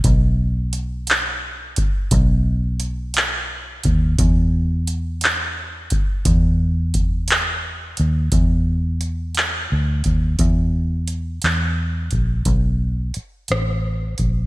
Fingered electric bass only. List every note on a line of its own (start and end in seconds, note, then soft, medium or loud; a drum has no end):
0.05 2.08 B1 loud
2.12 3.80 B1 loud
3.86 4.16 D#2 medium
4.19 6.22 E2 loud
6.26 7.94 E2 loud
8.00 8.30 D#2 medium
8.33 9.66 E2 loud
9.72 10.02 D2 medium
10.06 10.36 D#2 medium
10.40 11.39 E2 loud
11.44 12.08 E2 medium
12.13 12.43 A#1 medium
12.46 13.11 B1 loud
13.17 muted fingered electric bass stroke soft
13.51 14.15 A1 medium
14.20 14.47 A#1 medium